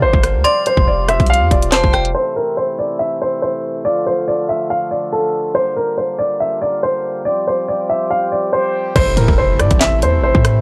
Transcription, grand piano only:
0.02 0.42 C5 medium
0.44 0.62 D5 medium
0.67 0.84 C5 medium
0.88 1.05 D5 medium
1.09 1.26 E5 medium
1.30 1.47 F5 loud
1.51 1.68 D5 medium
1.72 2.12 C5 loud
2.15 2.32 C5 loud
2.36 2.54 A#4 medium
2.57 2.75 C5 medium
2.79 2.96 D5 medium
2.99 3.17 E5 medium
3.22 3.39 C5 medium
3.42 3.82 C5 medium
3.85 4.02 D5 loud
4.07 4.24 C5 medium
4.28 4.45 D5 medium
4.49 4.66 E5 medium
4.70 4.88 F5 medium
4.91 5.09 D5 medium
5.13 5.53 A4 medium
5.55 5.72 C5 loud
5.77 5.94 A#4 medium
5.98 6.15 C5 medium
6.19 6.36 D5 medium
6.40 6.58 E5 medium
6.62 6.79 D5 medium
6.83 7.23 C5 medium
7.25 7.43 D5 medium
7.47 7.65 C5 medium
7.68 7.86 D5 medium
7.90 8.07 E5 medium
8.10 8.28 F5 medium
8.32 8.49 D5 medium
8.53 8.93 C5 medium
8.96 9.13 C5 loud
9.17 9.35 A#4 medium
9.38 9.55 C5 medium
9.60 9.77 D5 medium
9.80 9.98 E5 medium
10.03 10.20 C5 medium
10.23 10.61 C5 medium

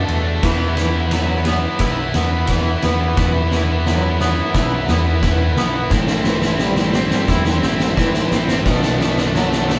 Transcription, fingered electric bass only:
0.09 0.40 E2 medium
0.43 1.65 E2 medium
1.80 2.11 B1 medium
2.15 2.76 E2 medium
2.84 3.14 E2 medium
3.17 4.39 E2 medium
4.54 4.85 B1 medium
4.89 5.57 E2 medium
5.57 5.88 B1 medium
5.91 7.13 A1 medium
7.28 7.59 E2 medium
7.63 8.24 A1 medium
8.32 8.62 A1 medium
8.66 9.79 B1 loud

